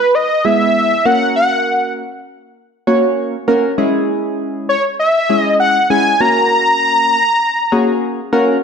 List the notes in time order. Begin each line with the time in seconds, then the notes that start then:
Already playing: B4
0.15 D#5
0.45 G#3 B3 E4 G#4 E5
1.05 A#3 C#4 F#4 A#4 F#5
1.36 F#5
2.87 A#3 C#4 F#4 C#5
3.48 A#3 C#4 F#4 A#4
3.78 G#3 C#4 E4 G#4
4.69 C#5
4.99 E5
5.29 G#3 C#4 E4 G#4
5.40 D#5
5.60 F#5
5.90 G#3 C#4 E4 G#4 G#5
6.20 A#3 C#4 F#4 A#4 A#5
7.72 A#3 C#4 F#4 G#4
8.33 A#3 C#4 F#4 A#4